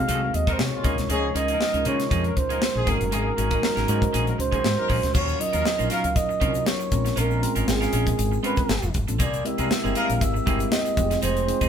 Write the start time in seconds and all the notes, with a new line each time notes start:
Already playing: G#3 C4 D#4 F#4 G#4 A4 C5 F5
0.08 C2 D#3 F#3 C4 D#4 G#4 A4, closed hi-hat
0.22 F#4 A#4, muted clean electric guitar stroke
0.33 D#2 D#5, muted clean electric guitar stroke, closed hi-hat
0.47 F#3 C4 D#4 F#4 A4 A#4, kick, closed hi-hat
0.53 C5
0.59 C3 C#5, snare
0.72 A#2 G#3 F4, muted clean electric guitar stroke
0.84 C#2 F3 G#3 A#3 C#4 D#4 F4 G#4 A#4, kick, closed hi-hat
0.97 C2, muted clean electric guitar stroke, snare, closed hi-hat
1.09 C#2 F3 A#3 D#4 G#4 C#5, closed hi-hat
1.34 C#2 F3 G#3 A#3 C#4 D#4 F4 G#4 A#4 D#5, closed hi-hat
1.48 F3 A#3 D#4 G#4 A#4, closed hi-hat
1.60 muted clean electric guitar stroke, snare
1.73 C#2 F3 G#3 A#3 C#4 D#4 F4 A#4, closed hi-hat
1.85 C#3 F3 G#3 A#3 C#4 D#4 F4 G#4 A#4 C#5, closed hi-hat
1.99 muted clean electric guitar stroke, snare, closed hi-hat
2.10 F2 F3 A#3 D#4 G#4, kick, closed hi-hat
2.24 F3 D#4 A#4, muted clean electric guitar stroke, closed hi-hat
2.36 C#2 C5, muted clean electric guitar stroke, kick, closed hi-hat
2.49 F3 A#3 D#4 G#4 A#4, closed hi-hat
2.62 snare
2.75 A#1 D#3 C#4 G#4, muted clean electric guitar stroke
2.86 G#1 F#3 G#3 A#3 C4 C#4 D#4 F#4 G#4 A#4, kick, closed hi-hat
2.93 C#4
3.01 F#1, muted clean electric guitar stroke, closed hi-hat
3.11 G#1 D#3 F#3 A#3 C#4 G#4, closed hi-hat
3.37 G#1 F#3 G#3 A#3 C#4 D#4 F#4 G#4 A#4, closed hi-hat
3.50 F#3 A#3 C#4 D#4 G#4 A#4, kick, closed hi-hat
3.62 muted clean electric guitar stroke, snare
3.76 G#1 F#3 G#3 A#3 C#4 D#4 F#4 A#4, snare, closed hi-hat
3.87 G#2 F#3 G#3 A#3 C#4 D#4 F#4 G#4 C5, closed hi-hat
3.95 D#5
4.01 muted clean electric guitar stroke, kick, closed hi-hat
4.13 A#1 D#3 F#3 A#3 C#4 G#4, closed hi-hat
4.27 F#3 D#4 A#4, muted clean electric guitar stroke, closed hi-hat
4.38 C#2 C5, muted clean electric guitar stroke, closed hi-hat
4.52 D#3 F#3 A#3 C#4 G#4, kick, closed hi-hat
4.64 G#2, snare
4.77 F#3 D#4 A#4, muted clean electric guitar stroke
4.88 A#1 F#3 A#3 C#4 G#4, kick, open hi-hat
5.02 C#2, muted clean electric guitar stroke, snare, closed hi-hat
5.14 D#2 F#3 C#4 F4 A#4 C#5, kick, crash, shaker
5.28 shaker
5.39 F#3 C#4 D#4 F4 A#4 D#5, muted clean electric guitar stroke, closed hi-hat
5.53 D#2 F#3 C#4 F4 A#4, closed hi-hat, shaker
5.64 muted clean electric guitar stroke, snare, shaker
5.78 A#1 F#3 C#4 D#4 F4 A#4, closed hi-hat, shaker
5.90 F#3 C#4 F4 A#4 F5, snare, closed hi-hat, shaker
6.04 C#2, muted clean electric guitar stroke, closed hi-hat, shaker
6.16 D#5, muted clean electric guitar stroke, kick, closed hi-hat, shaker
6.29 muted clean electric guitar stroke, shaker
6.40 C2 F#3 C#4 D#4 F4 A#4, kick, closed hi-hat
6.54 muted clean electric guitar stroke, closed hi-hat, shaker
6.66 C#5, muted clean electric guitar stroke, snare, shaker
6.80 muted clean electric guitar stroke, shaker
6.91 A#1 G#3 C4 C#4 F4 A#4, kick, closed hi-hat, shaker
7.05 muted clean electric guitar stroke, snare, closed hi-hat, shaker
7.16 A#1 G#3 C#4 F4 A#4, closed hi-hat, shaker
7.30 shaker
7.42 G#3 C4 C#4 F4 A#4, muted clean electric guitar stroke, closed hi-hat
7.56 G#1 G#3 C#4 F4 A#4, closed hi-hat, shaker
7.67 G#1 G#3 C4 C#4 F4 G#4, muted clean electric guitar stroke, snare, shaker
7.81 G#3 C#4 F4 A#4, snare, closed hi-hat, shaker
7.92 A#1 G#3 C#4 F4 A#4, closed hi-hat, shaker
8.06 muted clean electric guitar stroke, kick, closed hi-hat, shaker
8.18 G#1, muted clean electric guitar stroke, closed hi-hat, shaker
8.32 muted clean electric guitar stroke, shaker
8.43 G#3 C4 C#4 F4 A#4 B4, closed hi-hat
8.56 muted clean electric guitar stroke, kick, closed hi-hat, shaker
8.69 G1, muted clean electric guitar stroke, snare, shaker
8.82 F1, muted clean electric guitar stroke, shaker
8.94 G1, kick, closed hi-hat, shaker
9.07 A1 G3 B3 D4 F4 A4, muted clean electric guitar stroke, closed hi-hat, shaker
9.19 C2 E3 A#3 C4 G#4 D5, kick, closed hi-hat, shaker
9.33 closed hi-hat, shaker
9.44 G#3 C4 E4 G4 A#4 E5, muted clean electric guitar stroke, closed hi-hat
9.58 C2 E3 G3 A#3 C4 E4 G#4 A#4, closed hi-hat, shaker
9.70 muted clean electric guitar stroke, snare, shaker
9.84 G1 E3 G#3 A#3 C4 E4 G4 G#4 A#4, shaker
9.95 E3 G3 A#3 C4 E4 G#4 A#4 F5, closed hi-hat, shaker
10.09 A#1, muted clean electric guitar stroke, closed hi-hat, shaker
10.21 G#1 E5, muted clean electric guitar stroke, kick, closed hi-hat, shaker
10.34 muted clean electric guitar stroke, shaker
10.46 G1 E3 G#3 A#3 C4 E4 G4 G#4 A#4, kick, closed hi-hat
10.59 muted clean electric guitar stroke, closed hi-hat, shaker
10.71 D#5, muted clean electric guitar stroke, snare, shaker
10.85 muted clean electric guitar stroke, closed hi-hat, shaker
10.96 F1 G#3 C4 D#4 F4 G4, kick, closed hi-hat, shaker
11.04 G#4
11.11 muted clean electric guitar stroke, snare, closed hi-hat, shaker
11.22 F1 G#3 C4 D#4 G#4 C5, closed hi-hat, shaker
11.36 closed hi-hat, shaker
11.47 G#3 C4 D#4 F4 G#4, muted clean electric guitar stroke, closed hi-hat
11.61 F1 G#3 C4 D#4 G#4, kick, closed hi-hat, shaker